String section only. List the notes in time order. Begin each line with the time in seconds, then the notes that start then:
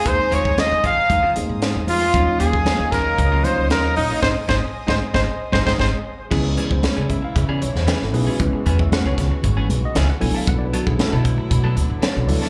Already playing: C5 G#5 A#5 D#6
2.14 C#5 D#5 F5 D#6
4.22 C5 G#5
6.30 C#3 E3 G#3 B3 E4
8.40 F#4
10.20 D3 F#3 A3 E4
12.30 F#4